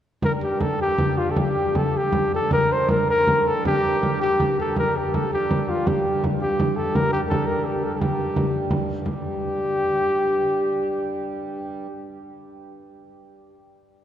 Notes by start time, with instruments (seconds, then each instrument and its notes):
0.22 harmonium G2, flugelhorn A#4, frame drum
0.43 flugelhorn G4
0.60 flugelhorn A4, frame drum
0.81 flugelhorn G4
0.98 frame drum
1.18 flugelhorn F4, frame drum
1.31 flugelhorn A4
1.36 flugelhorn G4, frame drum
1.75 flugelhorn A4, frame drum
1.97 flugelhorn G4
2.12 frame drum
2.32 flugelhorn A4, frame drum
2.51 flugelhorn A#4, frame drum
2.72 flugelhorn C5
2.89 flugelhorn A#4, frame drum
3.10 flugelhorn A#4
3.27 frame drum
3.46 flugelhorn A4, frame drum
3.65 flugelhorn G4, frame drum
3.84 frame drum
4.03 frame drum
4.21 flugelhorn G4, frame drum
4.40 frame drum
4.59 flugelhorn A4, frame drum
4.76 harmonium G2, flugelhorn A#4, frame drum
4.97 flugelhorn G4
5.14 flugelhorn A4, frame drum
5.33 flugelhorn G4
5.51 frame drum
5.69 flugelhorn F4
5.87 flugelhorn G4, frame drum
6.24 frame drum
6.42 flugelhorn G4
6.60 frame drum
6.76 flugelhorn A4, frame drum
6.95 flugelhorn A#4, frame drum
7.13 flugelhorn G4
7.29 flugelhorn A4, frame drum
7.47 flugelhorn A#4
7.65 flugelhorn G4
7.84 flugelhorn A4, frame drum
7.95 flugelhorn A4
8.00 flugelhorn G4, frame drum
8.19 frame drum
8.36 frame drum
8.71 frame drum
9.06 harmonium G2, flugelhorn G4, frame drum